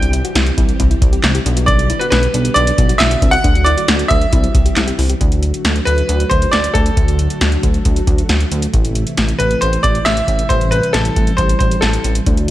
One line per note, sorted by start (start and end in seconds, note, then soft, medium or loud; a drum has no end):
0.00 0.22 C2 loud
0.00 1.44 E3 medium
0.00 3.41 G3 medium
0.00 1.44 C4 medium
0.00 1.44 G4 medium
0.00 closed hi-hat medium
0.13 0.22 E4 medium
0.13 closed hi-hat medium
0.24 0.33 F#4 medium
0.24 closed hi-hat soft
0.35 0.51 C2 loud
0.35 0.53 E4 medium
0.35 snare loud
0.35 closed hi-hat medium
0.46 closed hi-hat medium
0.58 0.73 C2 medium
0.58 0.75 E4 medium
0.58 kick loud
0.58 closed hi-hat medium
0.69 closed hi-hat soft
0.80 0.95 C2 loud
0.80 0.88 E4 medium
0.80 kick loud
0.80 closed hi-hat medium
0.91 1.08 E4 medium
0.91 closed hi-hat medium
1.02 1.17 C2 loud
1.02 kick loud
1.02 closed hi-hat medium
1.13 1.22 G4 medium
1.13 closed hi-hat medium
1.24 1.39 C2 loud
1.24 1.33 E4 medium
1.24 snare loud
1.24 clap medium
1.24 closed hi-hat medium
1.35 1.44 G4 medium
1.35 closed hi-hat medium
1.46 1.92 B1 loud
1.46 4.30 D3 medium
1.46 3.42 B3 medium
1.46 1.55 D4 medium
1.46 3.42 G4 medium
1.46 closed hi-hat medium
1.57 1.66 F#4 medium
1.57 closed hi-hat medium
1.66 1.86 D4 loud
1.66 2.01 D5 loud
1.66 kick loud
1.66 closed hi-hat medium
1.79 closed hi-hat medium
1.90 1.99 E4 medium
1.90 closed hi-hat medium
1.99 2.10 F#4 medium
1.99 2.04 B4 medium
1.99 closed hi-hat soft
2.10 2.27 B1 loud
2.10 2.30 D4 medium
2.10 2.57 B4 medium
2.10 snare loud
2.10 closed hi-hat medium
2.23 closed hi-hat medium
2.34 2.49 B1 loud
2.34 2.52 D4 medium
2.34 closed hi-hat medium
2.45 closed hi-hat soft
2.54 2.72 B1 loud
2.54 2.65 D4 medium
2.54 2.96 D5 loud
2.54 closed hi-hat medium
2.67 2.85 D4 medium
2.67 closed hi-hat medium
2.78 2.94 B1 loud
2.78 kick loud
2.78 closed hi-hat medium
2.89 2.98 F#4 medium
2.89 closed hi-hat medium
2.98 3.16 B1 loud
2.98 3.09 E4 medium
2.98 3.30 E5 loud
2.98 snare loud
2.98 clap medium
2.98 closed hi-hat medium
3.11 3.20 F#4 medium
3.11 closed hi-hat medium
3.22 3.37 C2 loud
3.22 3.31 D4 medium
3.22 kick medium
3.22 closed hi-hat medium
3.31 3.42 F#4 medium
3.31 3.66 F#5 loud
3.31 closed hi-hat medium
3.44 3.75 D2 loud
3.44 4.32 F#3 medium
3.44 4.32 A3 medium
3.44 3.62 D4 loud
3.44 4.32 F#4 medium
3.44 kick loud
3.44 closed hi-hat medium
3.55 closed hi-hat medium
3.64 3.75 E4 medium
3.64 4.06 D5 loud
3.64 closed hi-hat medium
3.77 3.86 F#4 medium
3.77 closed hi-hat soft
3.88 4.04 D2 loud
3.88 4.06 D4 medium
3.88 snare loud
3.88 closed hi-hat medium
3.99 closed hi-hat medium
4.08 4.26 D2 loud
4.08 4.28 D4 medium
4.08 4.94 E5 medium
4.08 kick loud
4.08 closed hi-hat medium
4.21 closed hi-hat soft
4.32 4.48 C2 loud
4.32 5.20 E3 medium
4.32 5.20 G3 medium
4.32 5.20 C4 medium
4.32 4.42 E4 medium
4.32 5.20 G4 medium
4.32 kick medium
4.32 closed hi-hat medium
4.44 4.61 E4 medium
4.44 closed hi-hat medium
4.55 4.70 C2 loud
4.55 kick loud
4.55 closed hi-hat medium
4.66 4.75 G4 medium
4.66 closed hi-hat medium
4.76 4.92 C2 medium
4.76 4.85 E4 medium
4.76 snare loud
4.76 clap medium
4.76 closed hi-hat medium
4.87 4.96 G4 medium
4.87 closed hi-hat medium
4.99 5.14 C2 loud
4.99 5.08 E4 medium
4.99 open hi-hat medium
5.10 5.19 G4 medium
5.10 closed hi-hat medium
5.21 5.52 D2 loud
5.21 8.70 D3 medium
5.21 8.70 F#3 medium
5.21 10.46 A3 medium
5.21 8.70 F#4 medium
5.21 kick loud
5.21 closed hi-hat medium
5.32 closed hi-hat medium
5.43 closed hi-hat medium
5.54 closed hi-hat soft
5.65 5.80 D2 loud
5.65 snare loud
5.65 closed hi-hat medium
5.76 closed hi-hat medium
5.85 6.02 D2 medium
5.85 6.32 B4 medium
5.85 closed hi-hat medium
5.98 closed hi-hat soft
6.09 6.24 D2 loud
6.09 closed hi-hat medium
6.20 closed hi-hat medium
6.30 6.46 D2 medium
6.30 6.53 C5 medium
6.30 kick medium
6.30 closed hi-hat medium
6.42 closed hi-hat medium
6.52 6.68 D2 medium
6.52 6.75 D5 loud
6.52 snare loud
6.52 closed hi-hat medium
6.64 closed hi-hat medium
6.74 6.90 D2 loud
6.74 8.47 A4 medium
6.74 kick medium
6.74 closed hi-hat medium
6.86 closed hi-hat medium
6.97 7.28 D2 loud
6.97 kick loud
6.97 closed hi-hat medium
7.08 closed hi-hat medium
7.19 closed hi-hat medium
7.30 closed hi-hat soft
7.41 7.57 D2 loud
7.41 snare loud
7.41 closed hi-hat medium
7.52 closed hi-hat soft
7.63 7.79 D2 medium
7.63 kick medium
7.63 closed hi-hat medium
7.74 closed hi-hat soft
7.85 8.01 D2 loud
7.85 kick medium
7.85 closed hi-hat medium
7.96 closed hi-hat medium
8.07 8.23 D2 loud
8.07 kick medium
8.07 closed hi-hat medium
8.18 closed hi-hat medium
8.29 8.45 D2 loud
8.29 snare loud
8.29 closed hi-hat medium
8.40 closed hi-hat medium
8.52 8.67 D2 loud
8.52 closed hi-hat medium
8.62 closed hi-hat medium
8.74 9.04 A1 loud
8.74 12.23 C3 medium
8.74 12.23 E3 medium
8.74 12.23 E4 medium
8.74 kick loud
8.74 closed hi-hat medium
8.85 closed hi-hat medium
8.95 closed hi-hat medium
9.07 closed hi-hat soft
9.17 9.33 A1 loud
9.17 snare loud
9.17 closed hi-hat medium
9.28 closed hi-hat soft
9.39 9.55 A1 loud
9.39 9.60 B4 medium
9.39 closed hi-hat medium
9.51 closed hi-hat soft
9.61 9.77 A1 loud
9.61 9.82 C5 medium
9.61 closed hi-hat medium
9.73 closed hi-hat medium
9.83 9.99 A1 medium
9.83 10.04 D5 medium
9.83 kick medium
9.83 closed hi-hat medium
9.95 closed hi-hat medium
10.05 10.22 A1 loud
10.05 10.51 E5 loud
10.05 snare loud
10.05 closed hi-hat medium
10.17 closed hi-hat medium
10.28 10.43 A1 loud
10.28 kick medium
10.28 closed hi-hat medium
10.39 closed hi-hat medium
10.49 10.81 A1 loud
10.49 12.25 G3 medium
10.49 10.72 C5 loud
10.49 kick loud
10.49 closed hi-hat medium
10.61 closed hi-hat medium
10.71 10.92 B4 medium
10.71 closed hi-hat medium
10.83 closed hi-hat soft
10.93 11.10 A1 loud
10.93 11.39 A4 medium
10.93 snare loud
10.93 closed hi-hat medium
11.05 closed hi-hat soft
11.16 11.32 A1 medium
11.16 kick medium
11.16 closed hi-hat medium
11.27 closed hi-hat soft
11.37 11.54 A1 loud
11.37 11.57 C5 medium
11.37 kick medium
11.37 closed hi-hat medium
11.49 closed hi-hat medium
11.59 11.76 A1 medium
11.59 11.82 C5 medium
11.59 kick medium
11.59 closed hi-hat medium
11.71 closed hi-hat medium
11.81 11.98 A1 loud
11.81 12.12 A4 medium
11.81 snare loud
11.81 closed hi-hat medium
11.93 closed hi-hat medium
12.04 12.20 A1 loud
12.04 closed hi-hat medium
12.15 closed hi-hat medium
12.26 12.51 D2 loud
12.26 12.51 D3 medium
12.26 12.51 F#3 medium
12.26 12.51 A3 medium
12.26 12.44 D4 medium
12.26 12.51 F#4 medium
12.26 kick loud
12.26 closed hi-hat medium
12.37 closed hi-hat medium